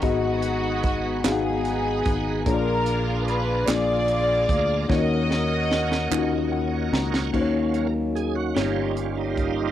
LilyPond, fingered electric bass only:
\new Staff \with { instrumentName = "Fingered electric bass" } { \clef bass \time 6/8 \key ees \minor \tempo 4. = 49 aes,,4. aes,,4 aes,,8 | bes,,4. bes,,4 d,8 | ees,4. ees,4 des,8 | ees,4. g,,4. | }